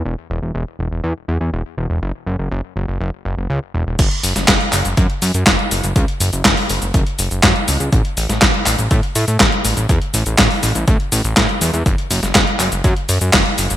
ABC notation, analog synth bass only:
X:1
M:4/4
L:1/16
Q:1/4=122
K:F#m
V:1 name="Analog synth bass" clef=bass
E,,, z E,,, E,,, E,,, z E,,, E,,, E,, z E,, E,, E,,, z E,,, E,,, | F,,, z F,,, F,,, F,,, z F,,, F,,, F,,, z F,,, F,,, C,, z E,,, E,,, | F,,, z F,,, F,,, F,,, z F,,, F,,, F,, z F,, F,, F,,, z F,,, F,,, | C,, z F,,, F,,, F,,, z F,,, F,,, F,,, z F,,, F,,, F,, z C,, C,, |
A,,, z A,,, A,,, A,,, z A,,, A,,, A,, z A,, A,, A,,, z A,,, A,,, | E,, z A,,, A,,, A,,, z A,,, A,,, A,,, z A,,, A,,, A,, z E,, E,, | F,,, z F,,, F,,, F,,, z F,,, F,,, F,, z F,, F,, F,,, z F,,, F,,, |]